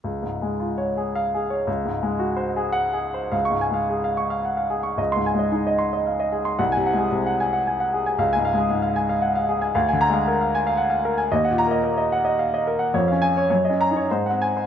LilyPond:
<<
  \new Staff \with { instrumentName = "Grand piano" } { \time 3/4 \key des \major \tempo 4 = 111 << { r2 f''8 r8 | r2 ges''8 r8 | r16 des'''8 r2 r16 | r16 c'''8 r2 r16 |
r16 aes''8 r2 r16 | r16 aes''8 r2 r16 | r8 bes''8 r2 | r8 bes''8 r2 |
r8 aes''8 r8 bes''8 r8 aes''8 | } \\ { r2. | r2. | f''8 aes''16 f''16 aes'16 f''16 des'''16 f''16 ges''16 f''16 aes'16 des'''16 | ees''8 aes''16 ees''16 aes'16 ees''16 c'''16 ees''16 f''16 ees''16 aes'16 c'''16 |
ges''8 ges''16 aes'16 c16 ges''16 aes''16 ges''16 aes''16 ges''16 aes'16 aes''16 | f''8 f''16 aes'16 aes,16 f''16 aes''16 f''16 ges''16 f''16 aes'16 aes''16 | f''16 aes''8 f''16 bes'16 f''16 aes''16 f''16 ges''16 f''16 bes'16 aes''16 | ees''16 ges''8 ees''16 bes'16 ees''16 ges''16 ees''16 f''16 ees''16 bes'16 ges''16 |
des''16 f''8 des''16 des''16 ees''8 des''16 c''16 ges''8 c''16 | } >> }
  \new Staff \with { instrumentName = "Grand piano" } { \clef bass \time 3/4 \key des \major \tuplet 3/2 { des,8 aes,8 aes8 f'8 des''8 aes'8~ aes'8 aes'8 des''8 } | \tuplet 3/2 { des,8 aes,8 aes8 ges'8 c''8 aes'8~ aes'8 aes'8 c''8 } | \tuplet 3/2 { des,8 aes,8 aes8 } r2 | \tuplet 3/2 { des,8 aes,8 aes8 } ees'8 r4. |
\tuplet 3/2 { c,8 c8 aes8 } r2 | \tuplet 3/2 { des,8 aes,8 aes8 } r2 | \tuplet 3/2 { d,8 d8 aes8 } r2 | \tuplet 3/2 { ees,8 bes,8 bes8 } r2 |
\tuplet 3/2 { f,8 des'4 ges,8 des'8 ees'8 aes,8 c'4 } | }
>>